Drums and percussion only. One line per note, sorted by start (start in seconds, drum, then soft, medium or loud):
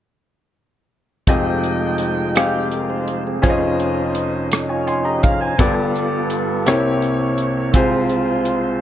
1.27 kick medium
1.27 closed hi-hat medium
1.63 closed hi-hat soft
1.98 closed hi-hat soft
2.36 cross-stick medium
2.36 closed hi-hat medium
2.71 closed hi-hat soft
3.08 closed hi-hat soft
3.44 kick medium
3.44 closed hi-hat medium
3.80 closed hi-hat soft
4.15 closed hi-hat soft
4.52 cross-stick medium
4.52 closed hi-hat medium
4.88 closed hi-hat soft
5.23 kick medium
5.23 closed hi-hat soft
5.59 kick medium
5.59 closed hi-hat medium
5.96 closed hi-hat soft
6.30 closed hi-hat medium
6.66 cross-stick medium
6.66 closed hi-hat medium
7.02 closed hi-hat soft
7.38 closed hi-hat soft
7.74 kick medium
7.74 closed hi-hat medium
8.10 closed hi-hat soft
8.45 closed hi-hat soft